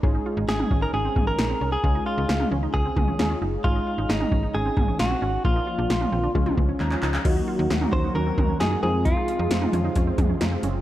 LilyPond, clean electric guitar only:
\new Staff \with { instrumentName = "Clean electric guitar" } { \time 4/4 \key aes \mixolydian \tempo 4 = 133 r4 aes'8. bes'16 aes'8. bes'4 aes'16~ | aes'8 f'4 r8 aes'4. r8 | f'4 ees'4 aes'4 ges'4 | f'2 r2 |
r4. c''8 bes'4 aes'8 aes'8 | f'2 r2 | }